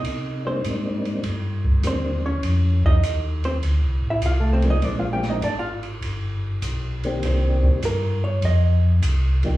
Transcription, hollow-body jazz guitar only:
X:1
M:4/4
L:1/16
Q:"Swing" 1/4=100
K:Cm
V:1 name="Hollow-body jazz guitar"
[Ee]2 [Cc]2 z8 [Cc]2 [_D_d]2- | [_D_d]2 [Ee]4 [Cc]2 z3 [=E=e] [Ff] [=A,=A] [Cc] [_E_e] | [Dd] [Ff] [Gg] [Ee] [Dd] [Ff] z8 z2 | c4 B2 _d2 e4 z4 |]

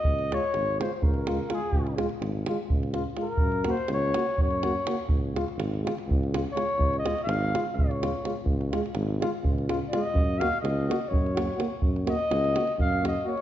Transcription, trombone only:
X:1
M:7/8
L:1/8
Q:1/4=125
K:Db
V:1 name="Trombone"
z F z F z F F | z F z F z F F | z G z G z G G | z F z F z F F |
z F z F z F F | z F z F z F F | z G z G z G G | z G z G z G G |]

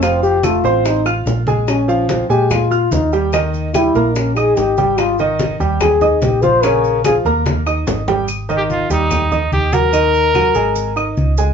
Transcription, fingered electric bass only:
X:1
M:4/4
L:1/8
Q:1/4=145
K:Ab
V:1 name="Fingered electric bass" clef=bass
F,,,3 =A,,,3 B,,,2- | B,,,3 B,,3 E,,2- | E,,3 B,,,3 A,,,2- | A,,,3 E,,3 B,,,2- |
B,,,3 E,,3 A,,,2- | A,,,3 E,,3 E,,2- | E,,3 A,,,3 D,,2 |]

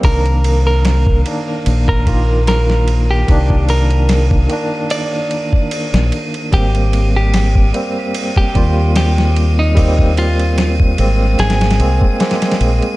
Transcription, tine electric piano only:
X:1
M:4/4
L:1/8
Q:"Swing 16ths" 1/4=74
K:Cm
V:1 name="Tine electric piano"
[E,B,D]3 [E,B,D]2 [E,B,F] z2 | [E,B,D]3 [E,B,D]4- [E,B,D] | [G,B,C]3 [G,B,C]2 [G,B,F] z2 | [G,B,C]3 [A,B,C]2 [A,B,C] [A,B,C]2 |]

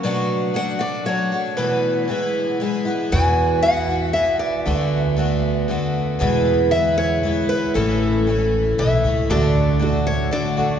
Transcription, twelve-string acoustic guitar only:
X:1
M:3/4
L:1/8
Q:1/4=117
K:Emix
V:1 name="Twelve-string acoustic guitar"
[B,,F,A,DF]2 [F,A,DF] [A,DF] [F,A,DF] [A,DF] | [E,,B,,E,A,B,E]2 [E,G,B,E]2 [E,G,B,E] [E,G,B,E] | [E,,B,,E,B,EF]2 [E,B,EF] [E,B,EF] [E,B,EF]2 | [D,A,B,F]2 [D,A,B,F]2 [D,A,B,F]2 |
[E,,B,,E,G,B,E]2 [E,G,B,E]2 [E,G,B,E]2 | [A,,E,A,CE]2 [E,A,CE]2 [E,A,CE] [A,CE] | [D,A,DF]2 [D,A,DF]2 [D,A,DF] [A,DF] |]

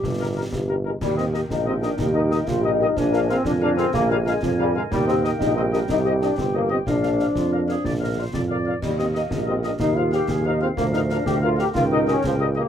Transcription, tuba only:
X:1
M:6/8
L:1/8
Q:3/8=123
K:Eb
V:1 name="Tuba" clef=bass
G,,,3 G,,,3 | E,,3 B,,,3 | E,,3 B,,,3 | B,,,3 F,,3 |
B,,,3 F,,3 | E,,3 B,,,3 | C,,3 G,,,3 | B,,,3 F,,3 |
B,,,3 F,,3 | E,,3 B,,,3 | E,,3 E,,3 | D,,3 D,,3 |
_D,,3 D,,3 |]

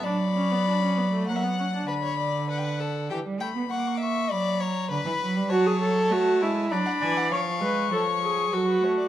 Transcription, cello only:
X:1
M:3/4
L:1/16
Q:1/4=99
K:Bm
V:1 name="Cello" clef=bass
F,8 F,4 | D,8 E, G, A, B, | ^A,4 F,4 D, E, F, G, | F,4 A,2 ^G,2 F,2 E,2 |
^E,2 ^G,2 E,4 F,2 A,2 |]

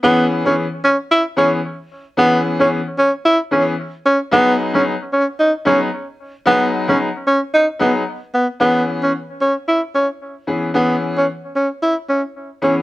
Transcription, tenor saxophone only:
X:1
M:4/4
L:1/16
Q:"Swing 16ths" 1/4=112
K:C#dor
V:1 name="Tenor saxophone"
B,2 z C z2 C z E z C z4 z | B,2 z C z2 C z E z C z3 C z | B,2 z C z2 C z D z C z4 z | B,2 z C z2 C z D z B, z3 B, z |
B,2 z C z2 C z E z C z4 z | B,2 z C z2 C z E z C z3 C z |]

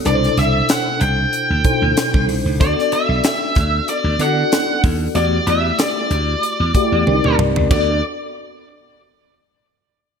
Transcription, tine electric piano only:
X:1
M:4/4
L:1/16
Q:"Swing 16ths" 1/4=94
K:Dmix
V:1 name="Tine electric piano"
[B,,DEABc]6 z4 [B,,D_E=EAc]4- [B,,D_E=EAc] z | [B,DFAd]6 z4 [B,DEFAd]4- [B,DEFAd] z | [A,EFGd]6 z4 [A,EFGd]2 [CD_EG_Bd]4 | [B,DFAd]2 z12 z2 |]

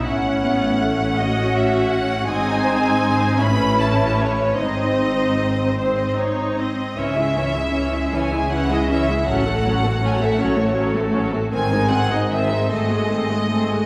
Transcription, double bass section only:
X:1
M:6/8
L:1/16
Q:3/8=52
K:G#phr
V:1 name="Double bass section" clef=bass
A,,,12 | G,,,6 A,,,6 | G,,,8- G,,,3 z | C,,6 C,,6 |
A,,,6 A,,,6 | G,,,6 G,,,6 |]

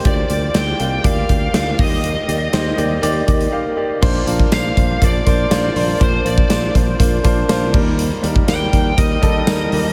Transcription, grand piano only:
X:1
M:4/4
L:1/8
Q:1/4=121
K:Bb
V:1 name="Grand piano"
[B,FGd] [B,FGd] [B,FGd] [B,FGf] [B,FGd] [B,FGd] [B,FGd] [B,EGe]- | [B,EGe] [B,EGd] [B,EGc] [B,EGd] [B,EGd] [B,EGd] [B,EGf] [B,EGd] | [B,DFc] [B,DFB] [B,DFc] [B,DFc] [B,DFc] [B,DFc] [B,DFc] [B,DFc] | [B,DFc] [B,DFc] [B,DFc] [B,DFc] [B,DFc] [B,DFc] [B,DFc] [G,B,EB]- |
[G,B,EB] [G,B,EB] [G,B,EB] [G,B,EB] [G,B,EB] [G,B,EA] [G,B,EB] [G,B,EB] |]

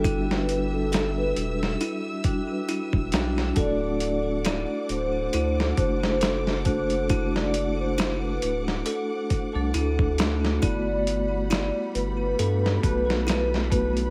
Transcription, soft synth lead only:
X:1
M:4/4
L:1/16
Q:"Swing 16ths" 1/4=68
K:Dmix
V:1 name="Soft synth lead"
A B2 A2 B2 z8 z | d4 d2 c4 c4 c2- | c d2 c2 B2 z8 z | d4 d2 B4 B4 B2 |]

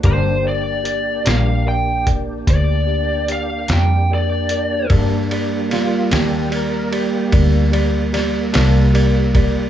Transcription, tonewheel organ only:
X:1
M:12/8
L:1/8
Q:3/8=49
K:Gm
V:1 name="Tonewheel organ"
[B,DG]12 | z2 F G B G z6 |]
V:2 name="Tonewheel organ"
z12 | [G,B,D]12 |]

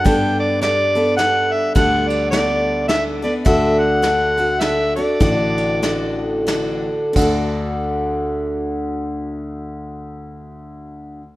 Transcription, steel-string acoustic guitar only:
X:1
M:3/4
L:1/8
Q:"Swing" 1/4=99
K:D
V:1 name="Steel-string acoustic guitar"
[G,B,DA]2 [G,B,DA] [B,DA] [G,B,DA]2 | [G,B,DA]2 [G,B,DA]2 [G,B,DA] [B,DA] | [D,DFA]2 [D,DFA] [DFA] [D,DFA] [DFA] | [D,DFA]2 [D,DFA]2 [D,DFA]2 |
[D,DFA]6- | [D,DFA]6 |]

